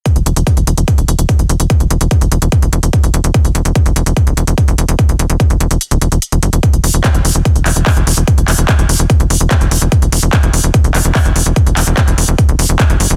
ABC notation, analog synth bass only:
X:1
M:4/4
L:1/16
Q:1/4=146
K:Dmix
V:1 name="Analog synth bass" clef=bass
z E,,, E,,, E,,, z E,,, E,,, E,,, z D,,, E,,, E,,, z E,,, E,,, E,,, | z E,,, E,,, E,,, z E,,, E,,, E,,, z E,,, E,,, E,,, z E,,, E,,, E,,, | z E,,, E,,, E,,, z E,,, E,,, E,,, z D,,, E,,, E,,, z E,,, E,,, E,,, | z E,,, E,,, E,,, z E,,, E,,, E,,, z D,,, E,,, E,,, z E,,, F,,, E,,, |
z E,,, E,,, E,,, z E,,, E,,, E,,, z D,,, E,,, E,,, z E,,, E,,, E,,, | z E,,, E,,, E,,, z E,,, E,,, E,,, z E,,, E,,, E,,, z E,,, E,,, E,,, | z E,,, E,,, E,,, z E,,, E,,, E,,, z D,,, E,,, E,,, z E,,, E,,, E,,, | z E,,, E,,, E,,, z E,,, E,,, E,,, z D,,, E,,, E,,, z E,,, F,,, E,,, |]